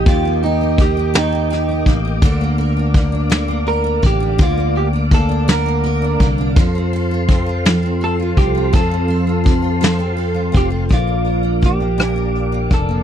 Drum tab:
RD |xxxxxx|xxxxxx|xxxxxx|xxxxxx|
HH |------|------|------|------|
SD |---oo-|---o--|---o--|---o--|
BD |o-o--o|o-o--o|o-o--o|o-o--o|

RD |xxxxxx|------|
HH |------|xxxxxx|
SD |---o--|---r--|
BD |o-o--o|o-o--o|